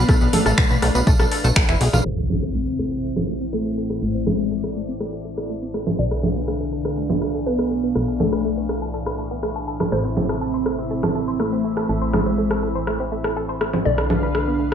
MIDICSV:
0, 0, Header, 1, 9, 480
1, 0, Start_track
1, 0, Key_signature, 0, "minor"
1, 0, Tempo, 491803
1, 84, Time_signature, 4, 2, 24, 8
1, 14388, End_track
2, 0, Start_track
2, 0, Title_t, "Analog synth pad"
2, 0, Program_c, 0, 89
2, 0, Note_on_c, 0, 62, 86
2, 0, Note_on_c, 0, 71, 74
2, 0, Note_on_c, 0, 77, 92
2, 1965, Note_off_c, 0, 62, 0
2, 1965, Note_off_c, 0, 71, 0
2, 1966, Note_off_c, 0, 77, 0
2, 2004, Note_on_c, 0, 60, 76
2, 2004, Note_on_c, 0, 72, 71
2, 2004, Note_on_c, 0, 76, 84
2, 2005, Note_on_c, 0, 64, 72
2, 3905, Note_off_c, 0, 76, 0
2, 3924, Note_on_c, 0, 74, 85
2, 5805, Note_off_c, 0, 60, 0
2, 5806, Note_off_c, 0, 64, 0
2, 5806, Note_off_c, 0, 72, 0
2, 5824, Note_off_c, 0, 74, 0
2, 5844, Note_on_c, 0, 62, 77
2, 5844, Note_on_c, 0, 71, 69
2, 5844, Note_on_c, 0, 77, 85
2, 7744, Note_off_c, 0, 71, 0
2, 9645, Note_off_c, 0, 62, 0
2, 9645, Note_off_c, 0, 77, 0
2, 9683, Note_on_c, 0, 60, 76
2, 9683, Note_on_c, 0, 64, 72
2, 9683, Note_on_c, 0, 76, 87
2, 13485, Note_off_c, 0, 60, 0
2, 13485, Note_off_c, 0, 64, 0
2, 13485, Note_off_c, 0, 76, 0
2, 13523, Note_on_c, 0, 71, 75
2, 13523, Note_on_c, 0, 77, 86
2, 13524, Note_on_c, 0, 62, 79
2, 14388, Note_off_c, 0, 62, 0
2, 14388, Note_off_c, 0, 71, 0
2, 14388, Note_off_c, 0, 77, 0
2, 14388, End_track
3, 0, Start_track
3, 0, Title_t, "Synth pluck"
3, 0, Program_c, 1, 84
3, 0, Note_on_c, 1, 71, 101
3, 323, Note_off_c, 1, 71, 0
3, 323, Note_on_c, 1, 69, 97
3, 949, Note_off_c, 1, 69, 0
3, 2004, Note_on_c, 1, 72, 92
3, 3350, Note_off_c, 1, 72, 0
3, 3443, Note_on_c, 1, 69, 90
3, 4163, Note_off_c, 1, 69, 0
3, 4164, Note_on_c, 1, 68, 88
3, 4790, Note_off_c, 1, 68, 0
3, 5844, Note_on_c, 1, 74, 94
3, 7284, Note_off_c, 1, 74, 0
3, 7284, Note_on_c, 1, 71, 91
3, 8003, Note_on_c, 1, 69, 91
3, 8004, Note_off_c, 1, 71, 0
3, 8629, Note_off_c, 1, 69, 0
3, 9683, Note_on_c, 1, 72, 96
3, 11123, Note_off_c, 1, 72, 0
3, 11123, Note_on_c, 1, 69, 95
3, 11843, Note_off_c, 1, 69, 0
3, 11843, Note_on_c, 1, 68, 89
3, 12470, Note_off_c, 1, 68, 0
3, 13521, Note_on_c, 1, 74, 94
3, 14388, Note_off_c, 1, 74, 0
3, 14388, End_track
4, 0, Start_track
4, 0, Title_t, "Synth arpeggio sound"
4, 0, Program_c, 2, 84
4, 85, Note_on_c, 2, 57, 79
4, 85, Note_on_c, 2, 69, 58
4, 135, Note_off_c, 2, 57, 0
4, 135, Note_off_c, 2, 69, 0
4, 207, Note_on_c, 2, 59, 80
4, 207, Note_on_c, 2, 71, 58
4, 255, Note_off_c, 2, 59, 0
4, 255, Note_off_c, 2, 71, 0
4, 325, Note_on_c, 2, 57, 78
4, 325, Note_on_c, 2, 69, 52
4, 354, Note_off_c, 2, 69, 0
4, 355, Note_off_c, 2, 57, 0
4, 447, Note_on_c, 2, 69, 81
4, 447, Note_on_c, 2, 81, 53
4, 495, Note_off_c, 2, 69, 0
4, 495, Note_off_c, 2, 81, 0
4, 565, Note_on_c, 2, 69, 86
4, 565, Note_on_c, 2, 81, 55
4, 615, Note_off_c, 2, 69, 0
4, 615, Note_off_c, 2, 81, 0
4, 688, Note_on_c, 2, 71, 77
4, 688, Note_on_c, 2, 83, 55
4, 716, Note_off_c, 2, 71, 0
4, 716, Note_off_c, 2, 83, 0
4, 805, Note_on_c, 2, 57, 74
4, 805, Note_on_c, 2, 69, 53
4, 855, Note_off_c, 2, 57, 0
4, 855, Note_off_c, 2, 69, 0
4, 927, Note_on_c, 2, 71, 51
4, 928, Note_on_c, 2, 59, 74
4, 975, Note_off_c, 2, 59, 0
4, 975, Note_off_c, 2, 71, 0
4, 1045, Note_on_c, 2, 57, 86
4, 1045, Note_on_c, 2, 69, 59
4, 1075, Note_off_c, 2, 57, 0
4, 1075, Note_off_c, 2, 69, 0
4, 1168, Note_on_c, 2, 69, 76
4, 1168, Note_on_c, 2, 81, 55
4, 1215, Note_off_c, 2, 69, 0
4, 1216, Note_off_c, 2, 81, 0
4, 1285, Note_on_c, 2, 57, 73
4, 1285, Note_on_c, 2, 69, 53
4, 1335, Note_off_c, 2, 57, 0
4, 1335, Note_off_c, 2, 69, 0
4, 1408, Note_on_c, 2, 57, 103
4, 1408, Note_on_c, 2, 69, 74
4, 1436, Note_off_c, 2, 57, 0
4, 1436, Note_off_c, 2, 69, 0
4, 1525, Note_on_c, 2, 57, 84
4, 1525, Note_on_c, 2, 69, 59
4, 1555, Note_off_c, 2, 57, 0
4, 1555, Note_off_c, 2, 69, 0
4, 1647, Note_on_c, 2, 64, 72
4, 1648, Note_on_c, 2, 52, 106
4, 1720, Note_off_c, 2, 52, 0
4, 1720, Note_off_c, 2, 64, 0
4, 1766, Note_on_c, 2, 56, 78
4, 1766, Note_on_c, 2, 68, 53
4, 1815, Note_off_c, 2, 56, 0
4, 1815, Note_off_c, 2, 68, 0
4, 1888, Note_on_c, 2, 65, 79
4, 1888, Note_on_c, 2, 77, 54
4, 1916, Note_off_c, 2, 65, 0
4, 1916, Note_off_c, 2, 77, 0
4, 2005, Note_on_c, 2, 57, 75
4, 2035, Note_off_c, 2, 57, 0
4, 2128, Note_on_c, 2, 69, 73
4, 2176, Note_off_c, 2, 69, 0
4, 2245, Note_on_c, 2, 69, 69
4, 2295, Note_off_c, 2, 69, 0
4, 2368, Note_on_c, 2, 72, 73
4, 2396, Note_off_c, 2, 72, 0
4, 2485, Note_on_c, 2, 57, 74
4, 2535, Note_off_c, 2, 57, 0
4, 2607, Note_on_c, 2, 60, 74
4, 2655, Note_off_c, 2, 60, 0
4, 2725, Note_on_c, 2, 57, 69
4, 2755, Note_off_c, 2, 57, 0
4, 2847, Note_on_c, 2, 69, 66
4, 2895, Note_off_c, 2, 69, 0
4, 2965, Note_on_c, 2, 69, 79
4, 3015, Note_off_c, 2, 69, 0
4, 3087, Note_on_c, 2, 72, 74
4, 3116, Note_off_c, 2, 72, 0
4, 3205, Note_on_c, 2, 57, 70
4, 3255, Note_off_c, 2, 57, 0
4, 3327, Note_on_c, 2, 60, 72
4, 3375, Note_off_c, 2, 60, 0
4, 3444, Note_on_c, 2, 57, 81
4, 3474, Note_off_c, 2, 57, 0
4, 3567, Note_on_c, 2, 69, 76
4, 3615, Note_off_c, 2, 69, 0
4, 3684, Note_on_c, 2, 69, 77
4, 3734, Note_off_c, 2, 69, 0
4, 3807, Note_on_c, 2, 72, 70
4, 3836, Note_off_c, 2, 72, 0
4, 3924, Note_on_c, 2, 57, 74
4, 3974, Note_off_c, 2, 57, 0
4, 4047, Note_on_c, 2, 60, 76
4, 4095, Note_off_c, 2, 60, 0
4, 4164, Note_on_c, 2, 57, 72
4, 4194, Note_off_c, 2, 57, 0
4, 4287, Note_on_c, 2, 69, 77
4, 4335, Note_off_c, 2, 69, 0
4, 4404, Note_on_c, 2, 69, 78
4, 4454, Note_off_c, 2, 69, 0
4, 4526, Note_on_c, 2, 72, 70
4, 4555, Note_off_c, 2, 72, 0
4, 4643, Note_on_c, 2, 57, 68
4, 4694, Note_off_c, 2, 57, 0
4, 4765, Note_on_c, 2, 60, 68
4, 4814, Note_off_c, 2, 60, 0
4, 4883, Note_on_c, 2, 57, 80
4, 4914, Note_off_c, 2, 57, 0
4, 5005, Note_on_c, 2, 69, 72
4, 5054, Note_off_c, 2, 69, 0
4, 5122, Note_on_c, 2, 69, 72
4, 5174, Note_off_c, 2, 69, 0
4, 5245, Note_on_c, 2, 72, 74
4, 5275, Note_off_c, 2, 72, 0
4, 5363, Note_on_c, 2, 57, 76
4, 5414, Note_off_c, 2, 57, 0
4, 5486, Note_on_c, 2, 60, 75
4, 5535, Note_off_c, 2, 60, 0
4, 5603, Note_on_c, 2, 57, 73
4, 5634, Note_off_c, 2, 57, 0
4, 5726, Note_on_c, 2, 69, 73
4, 5774, Note_off_c, 2, 69, 0
4, 5843, Note_on_c, 2, 69, 75
4, 5894, Note_off_c, 2, 69, 0
4, 5966, Note_on_c, 2, 71, 74
4, 5995, Note_off_c, 2, 71, 0
4, 6084, Note_on_c, 2, 57, 72
4, 6134, Note_off_c, 2, 57, 0
4, 6207, Note_on_c, 2, 59, 73
4, 6255, Note_off_c, 2, 59, 0
4, 6324, Note_on_c, 2, 57, 77
4, 6354, Note_off_c, 2, 57, 0
4, 6446, Note_on_c, 2, 69, 69
4, 6495, Note_off_c, 2, 69, 0
4, 6563, Note_on_c, 2, 69, 73
4, 6614, Note_off_c, 2, 69, 0
4, 6686, Note_on_c, 2, 71, 69
4, 6715, Note_off_c, 2, 71, 0
4, 6804, Note_on_c, 2, 57, 84
4, 6854, Note_off_c, 2, 57, 0
4, 6926, Note_on_c, 2, 59, 70
4, 6974, Note_off_c, 2, 59, 0
4, 7044, Note_on_c, 2, 57, 70
4, 7074, Note_off_c, 2, 57, 0
4, 7167, Note_on_c, 2, 69, 79
4, 7215, Note_off_c, 2, 69, 0
4, 7284, Note_on_c, 2, 69, 81
4, 7335, Note_off_c, 2, 69, 0
4, 7406, Note_on_c, 2, 71, 72
4, 7435, Note_off_c, 2, 71, 0
4, 7524, Note_on_c, 2, 57, 74
4, 7575, Note_off_c, 2, 57, 0
4, 7647, Note_on_c, 2, 59, 72
4, 7695, Note_off_c, 2, 59, 0
4, 7764, Note_on_c, 2, 57, 75
4, 7794, Note_off_c, 2, 57, 0
4, 7886, Note_on_c, 2, 69, 73
4, 7935, Note_off_c, 2, 69, 0
4, 8004, Note_on_c, 2, 69, 74
4, 8054, Note_off_c, 2, 69, 0
4, 8126, Note_on_c, 2, 71, 76
4, 8155, Note_off_c, 2, 71, 0
4, 8244, Note_on_c, 2, 57, 77
4, 8294, Note_off_c, 2, 57, 0
4, 8366, Note_on_c, 2, 59, 68
4, 8414, Note_off_c, 2, 59, 0
4, 8484, Note_on_c, 2, 57, 71
4, 8514, Note_off_c, 2, 57, 0
4, 8606, Note_on_c, 2, 69, 69
4, 8655, Note_off_c, 2, 69, 0
4, 8723, Note_on_c, 2, 69, 82
4, 8774, Note_off_c, 2, 69, 0
4, 8847, Note_on_c, 2, 71, 74
4, 8876, Note_off_c, 2, 71, 0
4, 8963, Note_on_c, 2, 57, 72
4, 9014, Note_off_c, 2, 57, 0
4, 9086, Note_on_c, 2, 59, 77
4, 9135, Note_off_c, 2, 59, 0
4, 9204, Note_on_c, 2, 57, 81
4, 9234, Note_off_c, 2, 57, 0
4, 9327, Note_on_c, 2, 69, 75
4, 9375, Note_off_c, 2, 69, 0
4, 9444, Note_on_c, 2, 69, 72
4, 9495, Note_off_c, 2, 69, 0
4, 9567, Note_on_c, 2, 71, 71
4, 9596, Note_off_c, 2, 71, 0
4, 9684, Note_on_c, 2, 57, 79
4, 9734, Note_off_c, 2, 57, 0
4, 9807, Note_on_c, 2, 60, 75
4, 9855, Note_off_c, 2, 60, 0
4, 9923, Note_on_c, 2, 57, 74
4, 9954, Note_off_c, 2, 57, 0
4, 10046, Note_on_c, 2, 69, 71
4, 10095, Note_off_c, 2, 69, 0
4, 10163, Note_on_c, 2, 69, 78
4, 10214, Note_off_c, 2, 69, 0
4, 10287, Note_on_c, 2, 72, 72
4, 10316, Note_off_c, 2, 72, 0
4, 10403, Note_on_c, 2, 57, 70
4, 10454, Note_off_c, 2, 57, 0
4, 10527, Note_on_c, 2, 60, 70
4, 10575, Note_off_c, 2, 60, 0
4, 10644, Note_on_c, 2, 57, 86
4, 10674, Note_off_c, 2, 57, 0
4, 10767, Note_on_c, 2, 69, 69
4, 10815, Note_off_c, 2, 69, 0
4, 10885, Note_on_c, 2, 69, 68
4, 10935, Note_off_c, 2, 69, 0
4, 11007, Note_on_c, 2, 72, 73
4, 11036, Note_off_c, 2, 72, 0
4, 11124, Note_on_c, 2, 57, 76
4, 11175, Note_off_c, 2, 57, 0
4, 11247, Note_on_c, 2, 60, 77
4, 11295, Note_off_c, 2, 60, 0
4, 11364, Note_on_c, 2, 57, 73
4, 11394, Note_off_c, 2, 57, 0
4, 11488, Note_on_c, 2, 69, 74
4, 11535, Note_off_c, 2, 69, 0
4, 11605, Note_on_c, 2, 69, 79
4, 11655, Note_off_c, 2, 69, 0
4, 11727, Note_on_c, 2, 72, 72
4, 11756, Note_off_c, 2, 72, 0
4, 11844, Note_on_c, 2, 57, 73
4, 11894, Note_off_c, 2, 57, 0
4, 11967, Note_on_c, 2, 60, 75
4, 12015, Note_off_c, 2, 60, 0
4, 12084, Note_on_c, 2, 57, 76
4, 12114, Note_off_c, 2, 57, 0
4, 12206, Note_on_c, 2, 69, 71
4, 12255, Note_off_c, 2, 69, 0
4, 12324, Note_on_c, 2, 69, 69
4, 12375, Note_off_c, 2, 69, 0
4, 12447, Note_on_c, 2, 72, 67
4, 12476, Note_off_c, 2, 72, 0
4, 12564, Note_on_c, 2, 57, 83
4, 12615, Note_off_c, 2, 57, 0
4, 12687, Note_on_c, 2, 60, 73
4, 12735, Note_off_c, 2, 60, 0
4, 12804, Note_on_c, 2, 57, 73
4, 12834, Note_off_c, 2, 57, 0
4, 12927, Note_on_c, 2, 69, 75
4, 12975, Note_off_c, 2, 69, 0
4, 13044, Note_on_c, 2, 69, 79
4, 13094, Note_off_c, 2, 69, 0
4, 13166, Note_on_c, 2, 72, 75
4, 13195, Note_off_c, 2, 72, 0
4, 13284, Note_on_c, 2, 57, 72
4, 13334, Note_off_c, 2, 57, 0
4, 13407, Note_on_c, 2, 60, 74
4, 13455, Note_off_c, 2, 60, 0
4, 13523, Note_on_c, 2, 57, 78
4, 13554, Note_off_c, 2, 57, 0
4, 13646, Note_on_c, 2, 69, 73
4, 13695, Note_off_c, 2, 69, 0
4, 13763, Note_on_c, 2, 69, 73
4, 13814, Note_off_c, 2, 69, 0
4, 13887, Note_on_c, 2, 71, 77
4, 13916, Note_off_c, 2, 71, 0
4, 14004, Note_on_c, 2, 57, 76
4, 14055, Note_off_c, 2, 57, 0
4, 14127, Note_on_c, 2, 59, 72
4, 14175, Note_off_c, 2, 59, 0
4, 14244, Note_on_c, 2, 57, 69
4, 14274, Note_off_c, 2, 57, 0
4, 14388, End_track
5, 0, Start_track
5, 0, Title_t, "Soft synth lead"
5, 0, Program_c, 3, 80
5, 0, Note_on_c, 3, 59, 106
5, 324, Note_on_c, 3, 57, 104
5, 339, Note_off_c, 3, 59, 0
5, 950, Note_off_c, 3, 57, 0
5, 2005, Note_on_c, 3, 60, 112
5, 3350, Note_off_c, 3, 60, 0
5, 3444, Note_on_c, 3, 57, 97
5, 4164, Note_on_c, 3, 56, 96
5, 4178, Note_off_c, 3, 57, 0
5, 4790, Note_off_c, 3, 56, 0
5, 5843, Note_on_c, 3, 62, 115
5, 7283, Note_on_c, 3, 59, 103
5, 7298, Note_off_c, 3, 62, 0
5, 8004, Note_on_c, 3, 57, 97
5, 8019, Note_off_c, 3, 59, 0
5, 8630, Note_off_c, 3, 57, 0
5, 9683, Note_on_c, 3, 60, 113
5, 11123, Note_on_c, 3, 57, 99
5, 11138, Note_off_c, 3, 60, 0
5, 11843, Note_on_c, 3, 56, 99
5, 11857, Note_off_c, 3, 57, 0
5, 12469, Note_off_c, 3, 56, 0
5, 13523, Note_on_c, 3, 62, 112
5, 14388, Note_off_c, 3, 62, 0
5, 14388, End_track
6, 0, Start_track
6, 0, Title_t, "Synth drone"
6, 0, Program_c, 4, 95
6, 0, Note_on_c, 4, 45, 80
6, 0, Note_on_c, 4, 52, 84
6, 1993, Note_off_c, 4, 45, 0
6, 1993, Note_off_c, 4, 52, 0
6, 2005, Note_on_c, 4, 45, 76
6, 2005, Note_on_c, 4, 52, 75
6, 14388, Note_off_c, 4, 45, 0
6, 14388, Note_off_c, 4, 52, 0
6, 14388, End_track
7, 0, Start_track
7, 0, Title_t, "Analog synth bass"
7, 0, Program_c, 5, 38
7, 84, Note_on_c, 5, 35, 106
7, 160, Note_off_c, 5, 35, 0
7, 206, Note_on_c, 5, 35, 76
7, 280, Note_off_c, 5, 35, 0
7, 446, Note_on_c, 5, 33, 84
7, 520, Note_off_c, 5, 33, 0
7, 564, Note_on_c, 5, 35, 109
7, 641, Note_off_c, 5, 35, 0
7, 686, Note_on_c, 5, 35, 78
7, 759, Note_off_c, 5, 35, 0
7, 803, Note_on_c, 5, 35, 99
7, 880, Note_off_c, 5, 35, 0
7, 925, Note_on_c, 5, 35, 85
7, 999, Note_off_c, 5, 35, 0
7, 1044, Note_on_c, 5, 35, 103
7, 1120, Note_off_c, 5, 35, 0
7, 1165, Note_on_c, 5, 35, 78
7, 1239, Note_off_c, 5, 35, 0
7, 1405, Note_on_c, 5, 35, 86
7, 1479, Note_off_c, 5, 35, 0
7, 1524, Note_on_c, 5, 35, 103
7, 1600, Note_off_c, 5, 35, 0
7, 1646, Note_on_c, 5, 29, 77
7, 1719, Note_off_c, 5, 29, 0
7, 1763, Note_on_c, 5, 35, 98
7, 1840, Note_off_c, 5, 35, 0
7, 1886, Note_on_c, 5, 35, 87
7, 1959, Note_off_c, 5, 35, 0
7, 2003, Note_on_c, 5, 33, 85
7, 3900, Note_off_c, 5, 33, 0
7, 3924, Note_on_c, 5, 33, 86
7, 5820, Note_off_c, 5, 33, 0
7, 5843, Note_on_c, 5, 35, 90
7, 7740, Note_off_c, 5, 35, 0
7, 7764, Note_on_c, 5, 35, 88
7, 9660, Note_off_c, 5, 35, 0
7, 9683, Note_on_c, 5, 33, 88
7, 11580, Note_off_c, 5, 33, 0
7, 11604, Note_on_c, 5, 33, 87
7, 13500, Note_off_c, 5, 33, 0
7, 13524, Note_on_c, 5, 35, 85
7, 14388, Note_off_c, 5, 35, 0
7, 14388, End_track
8, 0, Start_track
8, 0, Title_t, "Impact"
8, 0, Program_c, 6, 103
8, 2004, Note_on_c, 6, 60, 70
8, 3924, Note_off_c, 6, 60, 0
8, 14388, End_track
9, 0, Start_track
9, 0, Title_t, "Drums"
9, 84, Note_on_c, 9, 36, 117
9, 84, Note_on_c, 9, 37, 55
9, 87, Note_on_c, 9, 54, 61
9, 181, Note_off_c, 9, 37, 0
9, 182, Note_off_c, 9, 36, 0
9, 185, Note_off_c, 9, 54, 0
9, 205, Note_on_c, 9, 54, 42
9, 302, Note_off_c, 9, 54, 0
9, 324, Note_on_c, 9, 46, 113
9, 324, Note_on_c, 9, 64, 98
9, 421, Note_off_c, 9, 46, 0
9, 421, Note_off_c, 9, 64, 0
9, 447, Note_on_c, 9, 37, 58
9, 452, Note_on_c, 9, 54, 70
9, 544, Note_off_c, 9, 37, 0
9, 549, Note_off_c, 9, 54, 0
9, 564, Note_on_c, 9, 26, 124
9, 564, Note_on_c, 9, 36, 119
9, 571, Note_on_c, 9, 54, 58
9, 661, Note_off_c, 9, 26, 0
9, 662, Note_off_c, 9, 36, 0
9, 669, Note_off_c, 9, 54, 0
9, 687, Note_on_c, 9, 54, 38
9, 785, Note_off_c, 9, 54, 0
9, 804, Note_on_c, 9, 37, 57
9, 804, Note_on_c, 9, 46, 88
9, 902, Note_off_c, 9, 37, 0
9, 902, Note_off_c, 9, 46, 0
9, 928, Note_on_c, 9, 54, 80
9, 1026, Note_off_c, 9, 54, 0
9, 1044, Note_on_c, 9, 36, 122
9, 1044, Note_on_c, 9, 54, 66
9, 1141, Note_off_c, 9, 36, 0
9, 1142, Note_off_c, 9, 54, 0
9, 1166, Note_on_c, 9, 37, 56
9, 1166, Note_on_c, 9, 54, 42
9, 1264, Note_off_c, 9, 37, 0
9, 1264, Note_off_c, 9, 54, 0
9, 1284, Note_on_c, 9, 46, 104
9, 1381, Note_off_c, 9, 46, 0
9, 1409, Note_on_c, 9, 54, 81
9, 1507, Note_off_c, 9, 54, 0
9, 1521, Note_on_c, 9, 54, 73
9, 1524, Note_on_c, 9, 26, 120
9, 1524, Note_on_c, 9, 36, 122
9, 1524, Note_on_c, 9, 37, 54
9, 1619, Note_off_c, 9, 54, 0
9, 1621, Note_off_c, 9, 36, 0
9, 1622, Note_off_c, 9, 26, 0
9, 1622, Note_off_c, 9, 37, 0
9, 1647, Note_on_c, 9, 26, 38
9, 1649, Note_on_c, 9, 54, 38
9, 1744, Note_off_c, 9, 26, 0
9, 1746, Note_off_c, 9, 54, 0
9, 1764, Note_on_c, 9, 46, 93
9, 1862, Note_off_c, 9, 46, 0
9, 1887, Note_on_c, 9, 37, 55
9, 1887, Note_on_c, 9, 64, 85
9, 1890, Note_on_c, 9, 54, 73
9, 1985, Note_off_c, 9, 37, 0
9, 1985, Note_off_c, 9, 64, 0
9, 1987, Note_off_c, 9, 54, 0
9, 2005, Note_on_c, 9, 37, 45
9, 2102, Note_off_c, 9, 37, 0
9, 2244, Note_on_c, 9, 64, 83
9, 2342, Note_off_c, 9, 64, 0
9, 2367, Note_on_c, 9, 37, 45
9, 2465, Note_off_c, 9, 37, 0
9, 2724, Note_on_c, 9, 37, 48
9, 2822, Note_off_c, 9, 37, 0
9, 3087, Note_on_c, 9, 37, 46
9, 3087, Note_on_c, 9, 64, 86
9, 3184, Note_off_c, 9, 37, 0
9, 3184, Note_off_c, 9, 64, 0
9, 3444, Note_on_c, 9, 37, 47
9, 3542, Note_off_c, 9, 37, 0
9, 3806, Note_on_c, 9, 37, 47
9, 3904, Note_off_c, 9, 37, 0
9, 4163, Note_on_c, 9, 37, 48
9, 4163, Note_on_c, 9, 64, 84
9, 4261, Note_off_c, 9, 37, 0
9, 4261, Note_off_c, 9, 64, 0
9, 4526, Note_on_c, 9, 37, 46
9, 4623, Note_off_c, 9, 37, 0
9, 4883, Note_on_c, 9, 37, 46
9, 4981, Note_off_c, 9, 37, 0
9, 5246, Note_on_c, 9, 37, 45
9, 5344, Note_off_c, 9, 37, 0
9, 5603, Note_on_c, 9, 37, 48
9, 5701, Note_off_c, 9, 37, 0
9, 5726, Note_on_c, 9, 64, 73
9, 5823, Note_off_c, 9, 64, 0
9, 5966, Note_on_c, 9, 37, 47
9, 6063, Note_off_c, 9, 37, 0
9, 6083, Note_on_c, 9, 64, 82
9, 6180, Note_off_c, 9, 64, 0
9, 6323, Note_on_c, 9, 37, 44
9, 6420, Note_off_c, 9, 37, 0
9, 6686, Note_on_c, 9, 37, 47
9, 6783, Note_off_c, 9, 37, 0
9, 6926, Note_on_c, 9, 64, 82
9, 7023, Note_off_c, 9, 64, 0
9, 7043, Note_on_c, 9, 37, 45
9, 7141, Note_off_c, 9, 37, 0
9, 7406, Note_on_c, 9, 37, 46
9, 7503, Note_off_c, 9, 37, 0
9, 7763, Note_on_c, 9, 37, 45
9, 7861, Note_off_c, 9, 37, 0
9, 8003, Note_on_c, 9, 64, 80
9, 8101, Note_off_c, 9, 64, 0
9, 8126, Note_on_c, 9, 37, 46
9, 8224, Note_off_c, 9, 37, 0
9, 8483, Note_on_c, 9, 37, 46
9, 8581, Note_off_c, 9, 37, 0
9, 8846, Note_on_c, 9, 37, 46
9, 8944, Note_off_c, 9, 37, 0
9, 9203, Note_on_c, 9, 37, 45
9, 9301, Note_off_c, 9, 37, 0
9, 9566, Note_on_c, 9, 37, 47
9, 9566, Note_on_c, 9, 64, 69
9, 9663, Note_off_c, 9, 37, 0
9, 9663, Note_off_c, 9, 64, 0
9, 9683, Note_on_c, 9, 37, 48
9, 9781, Note_off_c, 9, 37, 0
9, 9923, Note_on_c, 9, 64, 75
9, 10021, Note_off_c, 9, 64, 0
9, 10046, Note_on_c, 9, 37, 49
9, 10144, Note_off_c, 9, 37, 0
9, 10403, Note_on_c, 9, 37, 47
9, 10501, Note_off_c, 9, 37, 0
9, 10766, Note_on_c, 9, 37, 50
9, 10766, Note_on_c, 9, 64, 82
9, 10864, Note_off_c, 9, 37, 0
9, 10864, Note_off_c, 9, 64, 0
9, 11124, Note_on_c, 9, 37, 45
9, 11221, Note_off_c, 9, 37, 0
9, 11486, Note_on_c, 9, 37, 46
9, 11584, Note_off_c, 9, 37, 0
9, 11843, Note_on_c, 9, 37, 55
9, 11843, Note_on_c, 9, 64, 83
9, 11941, Note_off_c, 9, 37, 0
9, 11941, Note_off_c, 9, 64, 0
9, 12206, Note_on_c, 9, 37, 51
9, 12304, Note_off_c, 9, 37, 0
9, 12563, Note_on_c, 9, 37, 49
9, 12661, Note_off_c, 9, 37, 0
9, 12925, Note_on_c, 9, 37, 51
9, 13023, Note_off_c, 9, 37, 0
9, 13282, Note_on_c, 9, 37, 51
9, 13380, Note_off_c, 9, 37, 0
9, 13405, Note_on_c, 9, 64, 71
9, 13503, Note_off_c, 9, 64, 0
9, 13645, Note_on_c, 9, 37, 51
9, 13743, Note_off_c, 9, 37, 0
9, 13762, Note_on_c, 9, 64, 84
9, 13860, Note_off_c, 9, 64, 0
9, 14003, Note_on_c, 9, 37, 52
9, 14101, Note_off_c, 9, 37, 0
9, 14388, End_track
0, 0, End_of_file